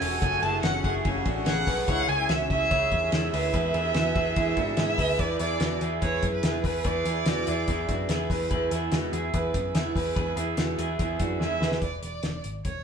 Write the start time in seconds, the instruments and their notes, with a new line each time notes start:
Already playing: transistor combo organ A3 F#4 G#4, analog synth pad A3 F#5 G#5 C#6, violin G#5
0.01 picked electric bass E1, twelve-string acoustic guitar F#3 A3 C#4 G#4, clean electric guitar F#4 A4, open hi-hat, ride
0.21 picked electric bass F#1, twelve-string acoustic guitar F#2 C#3 F#3 A3 C#4 G#4, clean electric guitar F#4 A4, violin G#5, kick, hi-hat pedal, ride
0.42 picked electric bass F#1, twelve-string acoustic guitar F#3 A3 C#4 G#4, clean electric guitar E4, violin A5, ride
0.63 picked electric bass F#1, twelve-string acoustic guitar F#3 A3 C#4 G#4, clean electric guitar F#4, violin F#5, snare, ride
0.84 picked electric bass F#1, twelve-string acoustic guitar F#3 A3 C#4 G#4, clean electric guitar E4, violin F#5, kick, ride
1.05 picked electric bass F#1, twelve-string acoustic guitar F#2 C#3 F#3 A3 C#4 G#4, kick, ride
1.25 picked electric bass A1, twelve-string acoustic guitar F#3 A3 C#4 G#4, clean electric guitar D4 F#4, kick, ride
1.46 picked electric bass A1, twelve-string acoustic guitar F#3 A3 C#4 G#4, violin F#5, snare, ride
1.67 picked electric bass B1, twelve-string acoustic guitar F#3 A3 C#4 G#4, clean electric guitar B4, kick, open hi-hat, ride
1.87 picked electric bass C#2, twelve-string acoustic guitar C#3 G#3 C#4 E4 G#4, transistor combo organ C#4 E4 G#4, analog synth pad C#5 E5 E6, clean electric guitar C#5, violin F#5, kick, hi-hat pedal, ride
2.09 picked electric bass C#2, twelve-string acoustic guitar C#4, clean electric guitar E4 G#4, violin G#5, ride
2.29 picked electric bass C#2, clean electric guitar C#4 F#4, violin E5, snare, ride
2.50 picked electric bass C#2, twelve-string acoustic guitar C#4 E4 G#4, violin E5, kick, ride
2.70 picked electric bass C#2, twelve-string acoustic guitar C#3 G#3 C#4 E4 G#4, clean electric guitar C#5, kick, ride
2.91 picked electric bass E2, twelve-string acoustic guitar C#4 E4 G#4, kick, ride
3.12 picked electric bass E2, twelve-string acoustic guitar G#3 C#4 E4 G#4, snare, ride
3.33 picked electric bass D2, twelve-string acoustic guitar C#4 E4 G#4, clean electric guitar B4, violin E5, open hi-hat, ride
3.52 picked electric bass E2, twelve-string acoustic guitar E3 G#3 B3 E4 G#4, transistor combo organ B3 E4 G#4, clean electric guitar B4, analog synth pad B4 G#5, kick, hi-hat pedal, ride
3.74 picked electric bass E2, twelve-string acoustic guitar B3 E4 G#4, ride
3.94 picked electric bass E2, twelve-string acoustic guitar G#3 B3 E4 G#4, clean electric guitar F#4, snare, ride
4.15 picked electric bass E2, twelve-string acoustic guitar B3 E4 G#4, kick, ride
4.36 picked electric bass E2, twelve-string acoustic guitar E3 G#3 B3 E4 G#4, kick, ride
4.57 picked electric bass G#2, twelve-string acoustic guitar B3 E4 G#4, clean electric guitar D4 F#4, kick, ride
4.77 picked electric bass G#2, twelve-string acoustic guitar G#3 B3 E4 G#4, violin E5, snare, ride
4.98 picked electric bass D2, twelve-string acoustic guitar B3 E4 G#4, clean electric guitar B4, kick, open hi-hat, ride
5.17 picked electric bass E2, twelve-string acoustic guitar E3 G#3 E4, transistor combo organ B3 E4 G#4, clean electric guitar G#4 B4, violin D5, kick, closed hi-hat
5.39 picked electric bass E2, twelve-string acoustic guitar B3 E4 G#4, violin D5, closed hi-hat
5.60 picked electric bass E2, twelve-string acoustic guitar E3 G#3 B3 E4 G#4, clean electric guitar F#4, snare, closed hi-hat
5.81 picked electric bass E2, twelve-string acoustic guitar B3 E4 G#4, closed hi-hat
6.02 picked electric bass E2, twelve-string acoustic guitar G#3 B3 E4 G#4, clean electric guitar B4, violin C#5, kick, closed hi-hat
6.22 picked electric bass F#2, twelve-string acoustic guitar E4 G#4, kick, closed hi-hat
6.34 violin B4
6.43 picked electric bass E2, twelve-string acoustic guitar E3 G#3 B3 E4 G#4, snare, closed hi-hat
6.63 picked electric bass E2, twelve-string acoustic guitar B3 E4 G#4, clean electric guitar B4, violin B4, kick, open hi-hat
6.84 picked electric bass E2, twelve-string acoustic guitar E3 G#3 B3 E4 G#4, clean electric guitar B4, violin D5, kick, closed hi-hat
7.05 picked electric bass E2, twelve-string acoustic guitar B3 E4 G#4, closed hi-hat
7.26 picked electric bass E2, twelve-string acoustic guitar E3 G#3 B3 E4 G#4, clean electric guitar F#4, snare, closed hi-hat
7.46 picked electric bass E2, twelve-string acoustic guitar B3 E4 G#4, closed hi-hat
7.68 picked electric bass E2, twelve-string acoustic guitar B3, clean electric guitar E4 G#4, kick, closed hi-hat
7.89 picked electric bass F#2, twelve-string acoustic guitar B3 E4 G#4, clean electric guitar D4 F#4, kick, closed hi-hat
8.09 picked electric bass E2, twelve-string acoustic guitar E3 G#3 B3 E4 G#4, snare, closed hi-hat
8.30 picked electric bass E2, twelve-string acoustic guitar B3 E4 G#4, clean electric guitar B4, kick, open hi-hat
8.49 picked electric bass E2, twelve-string acoustic guitar E3 G#3 B3 E4 G#4, transistor combo organ B3 E4 G#4, clean electric guitar B4, kick, closed hi-hat
8.71 picked electric bass E2, twelve-string acoustic guitar B3 E4 G#4, closed hi-hat
8.92 picked electric bass E2, twelve-string acoustic guitar E3 G#3 B3 E4 G#4, clean electric guitar F#4, snare, closed hi-hat
9.12 picked electric bass E2, twelve-string acoustic guitar B3 E4 G#4, closed hi-hat
9.33 picked electric bass E2, twelve-string acoustic guitar G#3 B3 E4 G#4, clean electric guitar B4, kick, closed hi-hat
9.54 picked electric bass F#2, twelve-string acoustic guitar B3 E4 G#4, kick, closed hi-hat
9.75 picked electric bass E2, twelve-string acoustic guitar E3 G#3 B3 E4 G#4, snare, closed hi-hat
9.96 picked electric bass E2, twelve-string acoustic guitar B3 E4 G#4, clean electric guitar B4, kick, open hi-hat
10.16 picked electric bass E2, twelve-string acoustic guitar E3 G#3 B3 E4 G#4, clean electric guitar B4, kick, closed hi-hat
10.37 picked electric bass E2, twelve-string acoustic guitar B3 E4 G#4, closed hi-hat
10.57 picked electric bass E2, twelve-string acoustic guitar E3 G#3 B3 E4 G#4, clean electric guitar F#4, snare, closed hi-hat
10.78 picked electric bass E2, twelve-string acoustic guitar B3 E4 G#4, closed hi-hat
10.99 picked electric bass E2, twelve-string acoustic guitar G#3 B3 E4 G#4, kick, closed hi-hat
11.20 picked electric bass F#2, twelve-string acoustic guitar B3 E4 G#4, clean electric guitar D4 F#4, kick, closed hi-hat
11.40 picked electric bass E2, twelve-string acoustic guitar E3 G#3 B3 E4 G#4, violin E5, snare
11.61 picked electric bass E2, twelve-string acoustic guitar B3 E4 G#4, clean electric guitar B4, snare
11.72 snare
11.82 picked electric bass E1, violin D5, kick, closed hi-hat
12.03 picked electric bass E1, violin D5, closed hi-hat
12.23 picked electric bass E1, snare, closed hi-hat
12.44 picked electric bass G#1, closed hi-hat
12.65 picked electric bass E1, violin C#5, kick, closed hi-hat